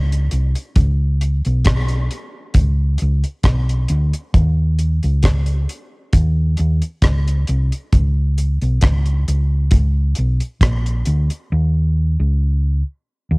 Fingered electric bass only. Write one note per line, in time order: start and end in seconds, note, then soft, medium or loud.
0.00 0.28 C#2 loud
0.32 0.53 C2 medium
0.77 1.41 C#2 loud
1.46 2.07 B1 medium
2.55 2.96 C#2 loud
3.02 3.22 C#2 loud
3.44 3.85 B1 medium
3.90 4.11 D2 medium
4.35 4.99 D#2 loud
5.04 5.65 C#2 medium
6.14 6.54 D#2 loud
6.59 6.80 D#2 medium
7.03 7.44 C#2 loud
7.49 7.70 C2 medium
7.94 8.57 C#2 loud
8.62 8.81 B1 medium
8.83 9.23 C#2 medium
9.28 9.68 C#2 medium
9.73 10.13 C#2 loud
10.19 10.39 B1 medium
10.61 11.02 A#1 medium
11.07 11.28 D2 medium
11.52 12.16 D#2 loud
12.20 12.81 C#2 loud
13.31 13.38 D#2 loud